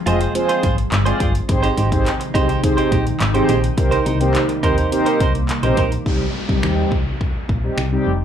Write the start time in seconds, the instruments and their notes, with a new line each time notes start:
Already playing: ambient pad F3 G#3 C4
0.06 fm bass F1, analog polysynth G#3 C4 F4 G#4 D#5, clean electric guitar F4 G#4 C5, closed hi-hat
0.21 clean electric guitar F4 G#4 C5, closed hi-hat
0.35 analog polysynth G#3 C4 F4 G#4 C5, muted clean electric guitar stroke, closed hi-hat
0.49 clean electric guitar F4 G#4 C5, closed hi-hat
0.63 fm bass G#1, clean electric guitar F4 G#4 C5, kick, closed hi-hat
0.77 muted clean electric guitar stroke, closed hi-hat
0.92 fm bass G1, muted clean electric guitar stroke, clap, closed hi-hat
1.06 analog polysynth G#3 C4 F4 G#4 D5, clean electric guitar F4 G#4 C5, closed hi-hat
1.20 fm bass G1, clean electric guitar F4 G#4 C5, kick, closed hi-hat
1.34 muted clean electric guitar stroke, closed hi-hat
1.49 fm bass G#1, ambient pad C3 D#3 G#3 D#4, analog polysynth C4 D#4 G4 G#4 C5, muted clean electric guitar stroke, kick, closed hi-hat
1.63 clean electric guitar D#4 G4 C5, closed hi-hat
1.77 fm bass G#1, clean electric guitar D#4 G4 C5, closed hi-hat
1.91 analog polysynth C4 D#4 G4 G#4 C5, muted clean electric guitar stroke, kick, closed hi-hat
2.06 muted clean electric guitar stroke, clap, closed hi-hat
2.20 muted clean electric guitar stroke, closed hi-hat
2.34 fm bass C2, analog polysynth C4 D#4 G4 G#4 C5, clean electric guitar D#4 G4 C5, kick, closed hi-hat
2.48 clean electric guitar D#4 G4 C5, closed hi-hat
2.63 analog polysynth C4 D#4 G4 G#4 C5, muted clean electric guitar stroke, kick, closed hi-hat
2.77 clean electric guitar D#4 G4 C5, closed hi-hat
2.91 fm bass A#1, clean electric guitar D#4 G4 C5, kick, closed hi-hat
3.06 muted clean electric guitar stroke, closed hi-hat
3.20 fm bass G#1, muted clean electric guitar stroke, clap, closed hi-hat
3.34 analog polysynth C4 D#4 G4 G#4 C5, clean electric guitar D#4 G4 C5, closed hi-hat
3.48 fm bass A#1, clean electric guitar D#4 G4 C5, closed hi-hat
3.63 muted clean electric guitar stroke, closed hi-hat
3.77 fm bass C2, ambient pad G3 A#3, analog polysynth C4 D#4 G4 A#4 C5, muted clean electric guitar stroke, kick, closed hi-hat
3.91 clean electric guitar D#4 A#4 C5, closed hi-hat
4.05 fm bass C2, clean electric guitar D#4 A#4 C5, closed hi-hat
4.20 analog polysynth C4 D#4 G4 A#4 C5, muted clean electric guitar stroke, closed hi-hat
4.35 muted clean electric guitar stroke, clap, closed hi-hat
4.49 muted clean electric guitar stroke, closed hi-hat
4.63 fm bass D#2, analog polysynth C4 D#4 G4 A#4 C5, clean electric guitar D#4 A#4 C5, kick, closed hi-hat
4.77 clean electric guitar D#4 A#4 C5, closed hi-hat
4.92 analog polysynth C4 D#4 G4 A#4 C5, muted clean electric guitar stroke, closed hi-hat
5.06 clean electric guitar D#4 A#4 C5, closed hi-hat
5.20 fm bass C2, clean electric guitar D#4 A#4 C5, kick, closed hi-hat
5.34 muted clean electric guitar stroke, closed hi-hat
5.49 muted clean electric guitar stroke, clap, closed hi-hat
5.63 fm bass A#1, analog polysynth C4 D#4 G4 A#4 C5, clean electric guitar D#4 A#4 C5, closed hi-hat
5.77 fm bass A#1, clean electric guitar D#4 A#4 C5, kick, closed hi-hat
5.92 muted clean electric guitar stroke, closed hi-hat
6.06 fm bass C2, analog polysynth G3 C4 D#4 G4, kick, downlifter
6.49 fm bass C2, analog polysynth G3 C4 D#4 G4, kick
6.63 fm bass D#2, finger snap
6.92 fm bass C2, kick
7.21 kick
7.49 fm bass A#1, analog polysynth D#4 F4, kick
7.63 analog polysynth G3 C4 D#4 G4
7.78 fm bass C2, finger snap
7.92 analog polysynth G3 C4 D#4 G4
8.06 fm bass F1